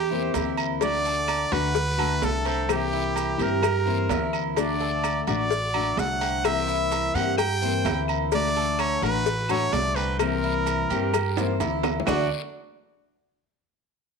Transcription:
Already playing: E2 G4
0.11 E3 A#3 C4 E4 C5
0.34 D2 E3 A#3 C4 E4, cowbell, low timbale, low agogo, short guiro, maracas
0.57 low agogo, short guiro, claves, maracas
0.81 D3 A3 D4 F#4 D5, cowbell, low agogo, long guiro, maracas
1.05 A4, maracas
1.28 cowbell, low timbale, low agogo, short guiro, claves, maracas
1.52 D2 A3 D4 F#4 B4, cowbell, low agogo, short guiro, maracas
1.75 muted nylon-string guitar stroke, cowbell, long guiro, maracas
1.98 A3 D4 F#4 A4, low agogo, claves
2.22 C2 D3 A3 D4 F#4 A4, cowbell, low timbale, short guiro, maracas
2.45 C4 A4, cowbell, low agogo, short guiro, maracas
2.68 C3 E3 A#3 C4 E4 G4, cowbell, low agogo, long guiro, claves, maracas
2.93 E4
3.16 cowbell, low timbale, low agogo, short guiro, maracas
3.38 G2 E3 A#3 C4 E4 G4, low agogo, short guiro, maracas
3.42 A#4
3.62 muted nylon-string guitar stroke, cowbell, low agogo, long guiro, claves, maracas
3.86 E3 A#3 C4 E4 C5
4.09 D2 E3 A#3 C4 E4, cowbell, low timbale, low agogo, short guiro, maracas
4.33 low agogo, short guiro, claves, maracas
4.56 D3 A3 D4 F#4 D5, cowbell, low agogo, long guiro, maracas
4.80 A4
5.04 cowbell, low timbale, low agogo, short guiro, claves, maracas
5.27 A1 A3 D4 F#4 D5, cowbell, low agogo, short guiro, maracas
5.51 muted nylon-string guitar stroke, cowbell, long guiro, maracas
5.74 A3 D4 F#4 A4, low agogo, claves
5.97 C2 D3 A3 D4 F#4 F#5, cowbell, low timbale, short guiro, maracas
6.21 C4, cowbell, low agogo, short guiro, maracas
6.44 C3 E3 A#3 C4 E4 E5, cowbell, low agogo, long guiro, claves, maracas
6.68 E4, maracas
6.92 cowbell, low timbale, low agogo, short guiro, maracas
7.15 G2 E3 A#3 C4 E4 G4 F#5, low agogo, short guiro, maracas
7.38 G5, muted nylon-string guitar stroke, cowbell, low agogo, long guiro, claves, maracas
7.62 E3 A#3 C4 E4 C5, maracas
7.85 D2 E3 A#3 C4 E4, cowbell, low timbale, low agogo, short guiro, maracas
8.08 low agogo, short guiro, claves, maracas
8.32 D3 A3 D4 F#4 D5, cowbell, low agogo, long guiro, maracas
8.57 A4
8.79 C#5, cowbell, low timbale, low agogo, short guiro, claves, maracas
9.02 A1 A3 D4 F#4 B4, cowbell, low agogo, short guiro, maracas
9.26 muted nylon-string guitar stroke, cowbell, long guiro, maracas
9.49 A3 D4 F#4 A4 C#5, low agogo, claves, maracas
9.72 C2 D3 A3 D4 F#4 D5, cowbell, low timbale, short guiro, maracas
9.95 C4 B4, cowbell, low agogo, short guiro, maracas
10.19 C3 E3 A#3 C4 E4 A#4, cowbell, low agogo, long guiro, claves, maracas
10.44 E4
10.66 cowbell, low timbale, low agogo, short guiro, maracas
10.90 G2 E3 A#3 C4 E4 G4, low agogo, short guiro, maracas
11.14 muted nylon-string guitar stroke, cowbell, low agogo, long guiro, claves, maracas
11.37 E3 A#3 C4 E4 C5, high timbale, maracas
11.60 D2 E3 A#3 C4 E4, cowbell, high timbale, low agogo, short guiro, maracas
11.83 high bongo, low timbale, low agogo, short guiro, claves, maracas
12.00 low bongo
12.06 D2 D3 A3 D4 F#4 A4 D5, low bongo, low timbale, long guiro, claves, maracas

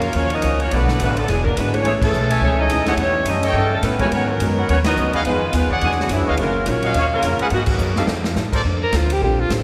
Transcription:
Already playing: F2 C#3 F#3 A#3 C#4 F4 A#4 C#5 F5
0.02 ride
0.13 D#2 F#2 F3 A#3 C#4 F4 F#4 C#5, ride
0.17 C#4
0.30 F3 A#3 C#4 D#4 F#4 A#4 D#5, ride
0.42 C#2 F#2 F3 A#3 C#4, hi-hat pedal, ride
0.60 F3 A#3 C#4 F4 F#4 C#5, ride
0.71 B1 B2 D3 F#3 A3 B3 D4 F#4 A4 B4 D5 F#5, ride
0.76 D4
0.88 snare
0.99 A1 B2 D3 F#3 A3 B3 D4 F#4 B4, hi-hat pedal, ride
1.17 D3 F#3 A3 B3 D4 A4, ride
1.28 E1 B2 D3 E3 F#3 G#3 B3 D4 G#4, snare, ride
1.33 F#4
1.44 F#3 A#3 B3 D4 A#4, kick
1.57 G#1 D3 E3 G#3 B3 D4 F#4 B4, hi-hat pedal, ride
1.73 A3 A#3 C#4 D4 E4 F#4 G#4 C#5, ride
1.83 A1 A2 E3 G#3 A3 C#4 E4 G#4 C#5, ride
1.88 C#4 E4
2.01 C#3 E3 A3 C#4 G#4 A4, kick, crash
2.12 B1 A2 G#3 C#4 E4, hi-hat pedal
2.30 A4 C#5 E5 G#5, ride
2.41 C#2 A2 E3 G#3 A3 C#4 E4 G#4 C#5
2.58 E3 G#3 C#4 D#4 G#4 A4 D#5
2.70 D#2 A2 G#3 C#4 E4, hi-hat pedal, ride
2.86 E3 G#3 A3 C#4 D#4 E4 G4 G#4 A4 C#5 D#5 F#5, snare, ride
2.96 E2 A2 E3 G3 A3 C#4 D#4 E4 G4, ride
3.01 C#5
3.25 F#2 A2 E3 G3 C#4 D#4 G4 A4 D#5, hi-hat pedal, ride
3.29 C#4
3.42 E3 G3 A3 C#4 E4 G4 A4 C#5 D#5 G5, ride
3.52 G2 A2 C#3 E3 A3
3.57 G3 C#4 D#4 E4 A4
3.70 C#3 E3 G3 A3 C#4 E4 A4
3.83 A2 G3 B3 C#4 D#4 E4 B4, snare, hi-hat pedal, ride
3.99 E3 G3 G#3 A3 B3 C#4 E4 F#4 G4 A#4 B4 C#5 G#5, kick, ride
4.12 G#2 D#3 F#3 B3 C#4 F#4 A#4 C#5, ride
4.16 C#4
4.29 D#3 F#3 B3 D#4 A#4
4.40 F#2 G#2 F#3 G#3 B3 C#4 F#4 A#4, hi-hat pedal, ride
4.57 A#4 B4 C#5 F#5
4.68 D#2 G#2 D#3 F#3 B3 C#4 F#4 A#4 C#5, ride
4.84 F#3 B3 D#4 F#4 A#4 D#5, snare, ride
4.97 C#2 G#2 F#3 B3 C#4, hi-hat pedal
5.13 D#3 F#3 B3 C#4 F#4 G#4 A#4 B4 C#5 D#5 F5, muted upright bass stroke, ride
5.25 F2 D#3 F3 G#3 B3 D#4 F4 G#4 B4, ride
5.53 D#2 D#3 F3 G#3 B3 D#4 G#4, hi-hat pedal, ride
5.57 F4 B4
5.70 G#4 C#5 D5 F#5, kick
5.81 E2 B2 D3 E3 F#3 G#3 B3 D4 G#4 C#5, ride
5.92 snare
5.99 B2 D3 F#3 G#3 B3 F#4, snare
6.09 F#2 G#2 B2 E3 F#3 G#3 B3 C#4 D4 E4 G#4 C#5, hi-hat pedal, ride
6.20 E2
6.26 D2 D3 G#3 B3 D4 F#4 B4 C#5 D#5 F5
6.37 F#1 C#3 D#3 F#3 A#3 C#4 F4 A#4, ride
6.66 A#1 D#3 F#3 A#3 C#4 D#4 F4 F#4 A#4 C#5, hi-hat pedal, ride
6.82 F#4 C#5 D#5 F5, ride
6.94 D#2 D#3 F#3 A#3 C#4 F4 C#5, ride
6.98 F#4
7.14 C#3 F#3 A#3 C#4 F4 A#4
7.22 F2 D#3 F#3 C#4 F4, hi-hat pedal, ride
7.39 F3 G#3 A#3 C#4 G#4 A#4 B4 F#5, muted upright bass stroke, ride
7.50 G#2 B2 D#3 G#3 A#3 B3 F#4 A#4, ride
7.54 D#3 F#3 B3
7.66 B2, kick, crash
7.70 D#3 F#3 A#3 B3 F#4
7.79 F#2 G#3 B3 F#4 A#4, hi-hat pedal
7.96 G3 C4 D#4 F4 G4 A4 D#5 F5, snare
8.07 F2 F3 D#4 G4, snare
8.11 A4
8.24 snare
8.36 A2 F3 D#4 G4 A4, snare, hi-hat pedal
8.53 A4 A#4 C5 D5, kick, crash
8.64 F2 A#3 D4 A4 C5
8.83 A#4
8.92 D2 A#3 D4 A4 C5, snare, hi-hat pedal, ride
8.96 F4
9.10 G4, ride
9.21 A#1 A#3 C4 D4 F4 G4 A4 A#4 C5
9.40 F4
9.49 A1 A#3 D4 A4 C5, snare, hi-hat pedal, ride

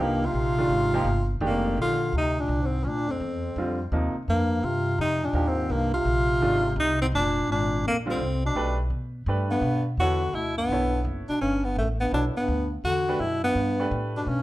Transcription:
Already playing: C2
0.00 G2 F3 A#3 D#4 G4
0.24 C3 F4
0.33 A#1
0.58 D#3 G#3 D4 F4
0.69 G#1
0.94 F3 A#3 D#4 G4
1.04 G1
1.41 F1 D#3 G#3 D4 G4
1.45 F2 A#3
1.77 A#1 D3
1.82 F4
2.13 D2 C3
2.18 D#4
2.39 A#2 D4
2.48 C2
2.62 G#2 C4
2.80 G#2 C#4
2.85 D2 A#2 D4
3.08 F2 C4
3.20 E2
3.56 F2 D3 G3 C4 F4
3.92 D#2 C3 F3 A#3 D#4
4.15 muted upright bass stroke
4.26 F2 G2
4.30 A#3
4.63 G2 C3 F4
4.98 F2 C3 D#4
5.23 A#2 D4
5.33 D#2 F3 A#3 D#4 G4
5.47 G#2 C4
5.70 C2 G2 A#3
5.94 C3 F4
6.05 A#1
6.41 G#1 D#3 G#3 D4 F4
6.76 C2 C3 D#4
7.01 G#2 C4
7.12 F1 A#2 D4
7.47 G#1 A#2
7.52 D4
7.84 A#1 F2 A#3
8.06 F2 D3 G3 C4 F4
8.11 C4
8.19 C2
8.45 B2 D4
8.55 B1 A3 D4 G4 B4
8.90 B2
9.26 G2 A3 D4 G4 B4
9.49 G2 B3
9.61 B2
9.97 E2 D3 B3 E4 F#4
10.01 A4 C#5
10.33 D2 B2 E4
10.56 G2 B3
10.69 B1 B3 E4 A4
10.73 C#5
11.05 F#1
11.29 B2 D4, muted upright bass stroke
11.41 G1 G2 C#4
11.65 G2 B3
11.76 A1 F#2 A3
12.00 G2 B3
12.12 B1 B2 B3 D4 E4 A4 C#5
12.36 G2 B3, muted upright bass stroke
12.48 D2
12.84 E2 D3 F#4
13.08 A3 D4 G4 B4
13.20 F#2 B2 E4
13.43 G2 B3
13.55 G2
13.79 A3 D4 G4 B4
13.91 A2
14.15 B2 D4
14.27 G2 B2 C#4

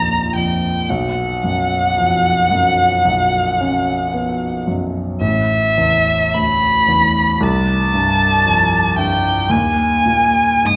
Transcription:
Already playing: A#1 D#2 F2 A#5
0.36 F2 G5
0.89 B1 F#5
1.44 F#2
1.98 F2
2.51 F#2
3.05 B1
3.61 C#4
4.14 B3
4.67 F#2
5.21 A1 E5
5.77 E2
6.34 D2 B5
6.88 E2
7.41 C2 A5
7.94 G2
8.45 F2
8.97 G2 G5
9.49 D#2 G#5
10.06 A#2
10.65 G#2 D#6

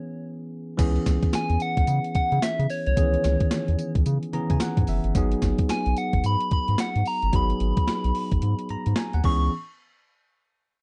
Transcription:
Already playing: E3 B3 C#4 G#4 C#5
0.77 C#2 E3 B3 C#4 G#4, kick, closed hi-hat, crash, tambourine
0.96 closed hi-hat
1.06 C#2, kick, snare, closed hi-hat, tambourine
1.23 kick, closed hi-hat
1.33 G#5, snare, closed hi-hat, tambourine
1.50 E2, closed hi-hat
1.60 F#5, closed hi-hat, tambourine
1.77 C#2, kick, closed hi-hat
1.87 C#3, closed hi-hat, tambourine
2.04 closed hi-hat
2.15 C#3 F#5, kick, closed hi-hat
2.32 C#3, closed hi-hat
2.42 E5, snare, closed hi-hat, tambourine
2.59 C#3, closed hi-hat
2.70 C#5, open hi-hat, tambourine
2.86 C2 C#5, closed hi-hat
2.96 C#2 D#3 B3 C#4 G#4, kick, closed hi-hat, tambourine
3.02 E3
3.14 closed hi-hat
3.24 C#2, snare, closed hi-hat, tambourine
3.40 kick, closed hi-hat
3.51 snare, closed hi-hat, tambourine
3.68 E2, closed hi-hat
3.79 closed hi-hat, tambourine
3.95 C#2, kick, closed hi-hat
4.06 C#3, closed hi-hat, tambourine
4.23 closed hi-hat
4.33 C#3 E3 B3 C#4 G#4 A#5, closed hi-hat
4.50 C#3 G#5, kick, closed hi-hat
4.60 F#5, snare, closed hi-hat, tambourine
4.77 G#2, kick, closed hi-hat
4.87 F#1 E5, open hi-hat, tambourine
5.04 G1, closed hi-hat
5.15 G#1 F#3 B3 D#4 G#4, kick, closed hi-hat, tambourine
5.32 closed hi-hat
5.42 G#1, kick, snare, closed hi-hat, tambourine
5.58 kick, closed hi-hat
5.69 G#5, snare, closed hi-hat, tambourine
5.86 B1, closed hi-hat
5.96 F#5, closed hi-hat, tambourine
6.13 G#1, kick, closed hi-hat
6.24 G#2 B5, closed hi-hat, tambourine
6.40 closed hi-hat
6.51 G#2 B5, kick, closed hi-hat
6.68 G#2, closed hi-hat
6.78 F#5, snare, closed hi-hat, tambourine
6.96 G#2, closed hi-hat
7.05 A#5, open hi-hat, tambourine
7.22 G1, closed hi-hat
7.32 G#1 F#3 B3 D#4 G#4 B5, kick, closed hi-hat
7.50 closed hi-hat
7.60 G#1, closed hi-hat
7.77 kick, closed hi-hat
7.87 snare, closed hi-hat
8.04 B1, closed hi-hat
8.15 open hi-hat
8.31 G#1, kick, closed hi-hat
8.42 G#2, closed hi-hat
8.59 closed hi-hat
8.69 G#2 A#5, closed hi-hat
8.86 G#2, closed hi-hat
8.96 G#5, snare, closed hi-hat
9.13 D#2 F#5, closed hi-hat
9.24 C#2 E3 B3 C#4 G#4 C#6, kick, crash

